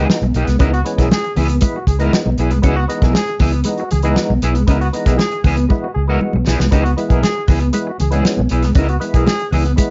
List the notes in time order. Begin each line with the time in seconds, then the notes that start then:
Already playing: E3 G#3 B3 D#4
0.09 muted clean electric guitar stroke, snare, high conga
0.22 B1 B3, muted clean electric guitar stroke, closed hi-hat, high conga
0.34 B1 B3 E4 G#4, muted clean electric guitar stroke, closed hi-hat
0.47 C2 G#3, muted clean electric guitar stroke, snare, closed hi-hat
0.59 C#2 E3 G#3 B3 C#4 D#4 E4 A#4, kick, closed hi-hat, muted conga
0.73 F#4, muted clean electric guitar stroke, closed hi-hat
0.85 E3 G#3 B3 C#4, muted clean electric guitar stroke, closed hi-hat
0.98 B1 B3 E4 G#4 A#4, kick, snare, closed hi-hat
1.11 G#3 G#4, snare, high conga
1.24 muted clean electric guitar stroke, closed hi-hat
1.36 C#2 B3 E4 G#4, muted clean electric guitar stroke, open hi-hat, low conga
1.49 B3, muted clean electric guitar stroke, closed hi-hat
1.61 E3 G#3 B3 E4, muted clean electric guitar stroke, kick, closed hi-hat, muted conga
1.75 F#4, muted clean electric guitar stroke
1.87 C#2 G#4, muted clean electric guitar stroke, kick, closed hi-hat
1.99 E3 G#3 B3 D#4 E4 A#4, closed hi-hat
2.13 muted clean electric guitar stroke, snare, high conga
2.25 B1 B3, muted clean electric guitar stroke, high conga
2.38 B1 B3 E4 G#4, muted clean electric guitar stroke, closed hi-hat
2.51 C2 G#3, muted clean electric guitar stroke, closed hi-hat
2.62 C#2 E3 G#3 B3 C#4 E4 F#4, kick, closed hi-hat, muted conga
2.66 G#4
2.76 F#4, muted clean electric guitar stroke
2.88 E3 G#3 B3 D#4, muted clean electric guitar stroke, closed hi-hat
3.01 B1 B3 E4 G#4 A#4, kick, snare, closed hi-hat
3.13 G#3 G#4, muted clean electric guitar stroke, snare, high conga
3.27 muted clean electric guitar stroke, closed hi-hat
3.39 C#2 B3 D#4 E4 G#4, muted clean electric guitar stroke, kick, open hi-hat, low conga
3.52 B3, muted clean electric guitar stroke, closed hi-hat
3.64 E3 G#3 B3 D#4, muted clean electric guitar stroke, closed hi-hat, muted conga
3.78 F#4, muted clean electric guitar stroke, closed hi-hat
3.91 C#2 G#4, muted clean electric guitar stroke, closed hi-hat, low conga
4.02 E3 G#3 B3 D#4 E4 G#4, closed hi-hat
4.16 muted clean electric guitar stroke, snare, high conga
4.29 B1 B3, muted clean electric guitar stroke, high conga
4.42 B1 B3 E4 G#4, muted clean electric guitar stroke, closed hi-hat
4.55 C2 G#3, muted clean electric guitar stroke, closed hi-hat
4.67 C#2 E3 G#3 B3 C#4 D#4 E4 A#4, kick, closed hi-hat, muted conga
4.81 F#4, muted clean electric guitar stroke, closed hi-hat
4.93 E3 G#3 B3 D#4, muted clean electric guitar stroke, closed hi-hat
5.06 B1 B3 E4 G#4 A#4, kick, snare, closed hi-hat
5.18 G#3 G#4, muted clean electric guitar stroke, snare, high conga
5.31 muted clean electric guitar stroke, closed hi-hat
5.44 C#2 B3 C#4 E4 G#4, muted clean electric guitar stroke, kick, open hi-hat, low conga
5.57 B3, muted clean electric guitar stroke, closed hi-hat
5.69 E3 G#3 B3 E4, muted clean electric guitar stroke, kick, muted conga
5.82 F#4, muted clean electric guitar stroke
5.94 C#2 G#4, muted clean electric guitar stroke
6.08 E3 G#3 B3 E4 F#4 A#4
6.21 muted clean electric guitar stroke, high conga
6.33 B1 B3, muted clean electric guitar stroke, high conga
6.47 B1 B3 E4 G#4, muted clean electric guitar stroke, snare
6.59 C2 G#3, muted clean electric guitar stroke, snare
6.71 C#2 E3 G#3 B3 C#4 D#4 E4 G#4, kick, closed hi-hat, muted conga
6.83 F#4, muted clean electric guitar stroke, closed hi-hat
6.97 E3 G#3 B3 E4, muted clean electric guitar stroke, closed hi-hat, muted conga
7.10 B1 B3 E4 G#4 A#4, kick, closed hi-hat
7.23 G#3 G#4, muted clean electric guitar stroke, snare, high conga
7.37 muted clean electric guitar stroke
7.47 C#2 B3 D#4 E4 G#4, muted clean electric guitar stroke, kick, open hi-hat, low conga
7.60 B3, muted clean electric guitar stroke, closed hi-hat
7.73 E3 G#3 B3 E4, muted clean electric guitar stroke, closed hi-hat, muted conga
7.87 F#4, muted clean electric guitar stroke
7.99 C#2 G#4, muted clean electric guitar stroke, closed hi-hat, low conga
8.11 E3 G#3 B3 C#4 E4 G#4, closed hi-hat
8.25 muted clean electric guitar stroke, snare, high conga
8.37 B1 B3, muted clean electric guitar stroke, high conga
8.49 B1 B3 E4 G#4, muted clean electric guitar stroke, closed hi-hat
8.62 C2 G#3, muted clean electric guitar stroke, snare, closed hi-hat
8.75 C#2 E3 G#3 B3 C#4 D#4 E4, kick, closed hi-hat, muted conga
8.79 A#4
8.89 F#4, muted clean electric guitar stroke, closed hi-hat
9.00 E3 G#3 B3 E4, muted clean electric guitar stroke, closed hi-hat, muted conga
9.13 B1 B3 E4 G#4 A#4, kick, closed hi-hat
9.26 G#3 G#4, muted clean electric guitar stroke, snare, high conga
9.39 muted clean electric guitar stroke, closed hi-hat
9.51 C#2 B3 D#4 E4 G#4, muted clean electric guitar stroke, open hi-hat, low conga
9.65 B3, muted clean electric guitar stroke, closed hi-hat
9.76 E3 G#3 B3 E4, muted clean electric guitar stroke, kick, closed hi-hat, muted conga